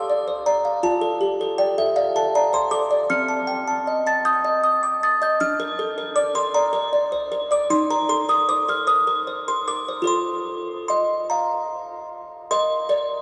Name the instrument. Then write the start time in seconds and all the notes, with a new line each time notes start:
music box
Already playing: D4 F5 D6
0.10 D5
0.28 C5
0.46 D5 A#5
0.65 F5
0.83 F4 A5
1.01 A4
1.21 G4
1.41 A4
1.58 D5 G5
1.78 A4 E5
1.96 D5 F5
2.16 A4 A5
2.35 D5 A#5
2.53 C5 C6
2.71 A4 D6
2.91 D5
3.10 C4 F6
3.29 A5
3.47 G5
3.67 A5
3.87 D#5
4.07 A5 A6
4.25 D#6 G6
4.44 D#5
4.64 D#6
4.83 D6
5.03 D#6 A6
5.22 D#5 G6
5.40 D4 F6
5.60 A#4
5.79 A4
5.98 A#4
6.16 D5 D6
6.35 A#4 C6
6.54 D5 A#5
6.73 A#4
6.93 D5
7.12 C5
7.32 A#4
7.51 D5 D6
7.70 D#4 C6
7.90 A#4 A#5
8.09 A4 C6
8.29 A#4 D#6
8.49 C5 D6
8.68 A#4 F6
8.87 C5 D#6
9.07 A#4
9.27 C5
9.48 A#4 C6
9.68 A#4 D6
9.88 C5
10.02 F4 A4 C5
10.07 C6
10.88 D#5 C6
11.30 F5 A#5
12.51 A#4 D#5 C6
12.89 A#4 D5